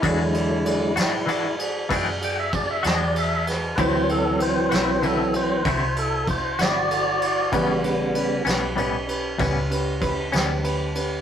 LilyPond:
<<
  \new Staff \with { instrumentName = "Tonewheel organ" } { \time 12/8 \key e \dorian \tempo 4. = 64 << { e'2~ e'8 r8 <fis'' g''>16 r16 g''16 e''16 d''16 e''16 dis''16 d''16 e''8 r8 | <b' c''>8 a'8 c''8 <b' c''>8 a'8 c''8 <b' c''>8 a'8 c''8 d''4. | r1. | } \\ { r1. | r1 r8 fis'4.~ | fis'8 r1 r4. | } >> }
  \new Staff \with { instrumentName = "Tonewheel organ" } { \clef bass \time 12/8 \key e \dorian <d fis gis>4. r1 r8 | <e fis c'>2~ <e fis c'>8 <e fis c'>8 r2. | <cis g b>4. r1 r8 | }
  \new Staff \with { instrumentName = "Upright piano" } { \time 12/8 \key e \dorian <fis' gis' d''>8 <fis' gis' d''>8 <fis' gis' d''>8 <fis' gis' d''>8 <fis' gis' d''>8 <fis' gis' d''>8 <fis' gis' d''>8 <fis' gis' d''>8 <fis' gis' d''>8 <fis' gis' d''>8 <fis' gis' d''>8 <fis' gis' b'>8 | <e' fis' c''>8 <e' fis' c''>8 <e' fis' c''>8 <e' fis' c''>8 <e' fis' c''>8 <e' fis' c''>8 <e' fis' c''>8 <e' fis' c''>8 <e' fis' c''>8 <e' fis' c''>8 <e' fis' a'>8 <e' fis' c''>8 | <cis' g' b'>8 <cis' g' b'>8 <cis' g' b'>8 <cis' g' b'>8 <cis' g' b'>8 <cis' g' b'>8 <cis' g' b'>8 <cis' g' b'>8 <cis' g' b'>8 <cis' g' b'>8 <cis' g' b'>8 <cis' g' b'>8 | }
  \new Staff \with { instrumentName = "Clean electric guitar" } { \time 12/8 \key e \dorian <e gis d' fis'>8 r4 <gis d' fis'>8 <e gis d' fis'>8 r8 <e gis d' fis'>8 r4 <gis d' fis'>8 r4 | <d c' e' fis'>8 r4 <c' e' fis'>8 <d c' e' fis'>8 r8 <d c' e' fis'>8 r4 <c' e' fis'>8 r4 | <a, g b cis'>8 r4 <g b cis'>8 <a, g b cis'>8 r8 <a, g b cis'>8 r4 <g b cis'>8 r4 | }
  \new Staff \with { instrumentName = "Fingered electric bass" } { \clef bass \time 12/8 \key e \dorian e,4. gis,4. fis,4. e,4. | d,4. b,,4. c,4. g,,4. | a,,4. b,,4. cis,4. d,4. | }
  \new DrumStaff \with { instrumentName = "Drums" } \drummode { \time 12/8 <bd cymr>8 cymr8 cymr8 <cymr sn>8 cymr8 cymr8 <bd cymr sn>8 cymr8 <bd cymr>8 <cymr sn>8 cymr8 <cymr sn>8 | <bd cymr>8 cymr8 cymr8 <cymr sn>8 cymr8 cymr8 <bd cymr sn>8 cymr8 <bd cymr>8 <cymr sn>8 cymr8 cymr8 | <bd cymr>8 cymr8 cymr8 <cymr sn>8 cymr8 cymr8 <bd cymr sn>8 cymr8 <bd cymr>8 <cymr sn>8 cymr8 cymr8 | }
>>